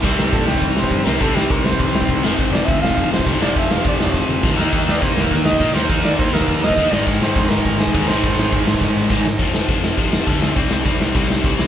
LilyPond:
<<
  \new Staff \with { instrumentName = "Flugelhorn" } { \time 4/4 \key f \major \tempo 4 = 205 bes'8 bes'8 a'8 g'4 c''4 bes'8 | a'8 g'8 bes'8 c''2 r8 | r8 d''8 e''8 f''4 c''4 d''8 | e''8 f''8 d''8 c''2 r8 |
r8 d''8 c''8 bes'4 ees''4 c''8 | r8 d''8 c''8 bes'4 ees''4 d''8 | r8 c''4 bes'4 aes'4 c''8~ | c''2. r4 |
r1 | r1 | }
  \new Staff \with { instrumentName = "Distorted electric guitar" } { \clef bass \time 4/4 \key f \major r1 | r1 | r1 | r1 |
<ees g bes ees'>4 <ees g bes ees'>4 <ees g bes ees'>4 <ees g bes ees'>4 | <ees g bes ees'>4 <ees g bes ees'>4 <ees g bes ees'>4 <ees g bes ees'>8 r8 | <aes, ees aes c' ees'>4 <aes, ees aes c' ees'>4 <aes, ees aes c' ees'>4 <aes, ees aes c' ees'>4 | <aes, ees aes c' ees'>4 <aes, ees aes c' ees'>4 <aes, ees aes c' ees'>4 <aes, ees aes c' ees'>4 |
<f a c' f'>2.~ <f a c' f'>8 <f a c' f'>8 | <c g c' e'>2.~ <c g c' e'>8 <c g c' e'>8 | }
  \new Staff \with { instrumentName = "Distorted electric guitar" } { \clef bass \time 4/4 \key f \major <c g c'>1 | <c g c'>2.~ <c g c'>8 <f, c f>8~ | <f, c f>2.~ <f, c f>8 <f, c f>8~ | <f, c f>2.~ <f, c f>8 <ees bes ees'>8~ |
<ees bes ees'>2.~ <ees bes ees'>8 <ees bes ees'>8~ | <ees bes ees'>2.~ <ees bes ees'>8 <aes, ees aes>8~ | <aes, ees aes>2.~ <aes, ees aes>8 <aes, ees aes>8~ | <aes, ees aes>2.~ <aes, ees aes>8 r8 |
r1 | r1 | }
  \new Staff \with { instrumentName = "Distorted electric guitar" } { \clef bass \time 4/4 \key f \major <c g c'>2.~ <c g c'>8 <c g c'>8 | <c g c'>2.~ <c g c'>8 <f, c f>8~ | <f, c f>2. <f, c f>8 <f, c f>8~ | <f, c f>2. <f, c f>8 <ees bes ees'>8~ |
<ees bes ees'>2. <ees bes ees'>8 <ees bes ees'>8~ | <ees bes ees'>2. <ees bes ees'>8 <aes, ees aes>8~ | <aes, ees aes>2. <aes, ees aes>8 <aes, ees aes>8~ | <aes, ees aes>2. <aes, ees aes>8 r8 |
<f, c f>4 <f, c f>4 <f, c f>4 <f, c f>4 | <c g c'>4 <c g c'>4 <c g c'>4 <c g c'>4 | }
  \new Staff \with { instrumentName = "Picked electric bass" } { \clef bass \time 4/4 \key f \major c,8 c,8 bes,8 c,8 c,4 g,8 c,8 | c,8 c,8 c,8 c,8 c,8 c,8 c,8 f,,8 | f,,8 f,,8 d,8 f,,8 f,,4 c,8 f,,8 | f,,8 f,,8 f,,8 f,,8 f,,8 f,,8 d,8 ees,8 |
ees,8 ees,8 c8 ees,8 ees,4 bes,8 ees,8 | ees,8 ees,8 ees,8 ees,8 ees,8 ees,8 ees,8 aes,,8 | aes,,8 aes,,8 f,8 aes,,8 aes,,4 ees,8 aes,,8 | aes,,8 aes,,8 aes,,8 aes,,8 aes,,8 aes,,8 aes,,8 aes,,8 |
f,,8 f,,8 f,,8 f,,8 f,,4 d,4 | c,8 c,8 c,8 c,8 c,4 c,4 | }
  \new DrumStaff \with { instrumentName = "Drums" } \drummode { \time 4/4 <cymc bd>8 sn8 <bd cymr>8 sn16 bd16 <bd cymr>8 sn16 bd16 <bd cymr>8 sn8 | <bd cymr>8 sn8 <bd cymr>8 sn16 bd16 <bd cymr>8 sn16 bd16 <bd cymr>8 sn8 | <bd cymr>8 sn8 <bd cymr>8 sn16 bd16 <bd cymr>8 sn16 bd16 <bd cymr>8 sn8 | <bd cymr>8 sn8 <bd cymr>8 sn16 bd16 <bd sn>4 <bd sn>8 sn8 |
<cymc bd>8 sn8 <bd cymr>8 sn16 bd16 <bd cymr>8 sn16 bd16 <bd cymr>8 sn8 | <bd cymr>8 sn8 <bd cymr>8 sn16 bd16 <bd cymr>8 sn16 bd16 <bd cymr>8 sn8 | <bd cymr>8 sn8 <bd cymr>8 sn16 bd16 <bd cymr>8 sn16 bd16 <bd cymr>8 sn8 | <bd cymr>8 sn8 <bd cymr>8 sn16 bd16 <bd sn>4 <bd sn>8 sn8 |
<bd cymr>8 sn8 <bd cymr>8 sn8 <bd cymr>8 sn8 <bd cymr>8 sn8 | <bd cymr>8 sn8 <bd cymr>8 sn8 <bd cymr>8 sn8 <bd cymr>8 sn8 | }
>>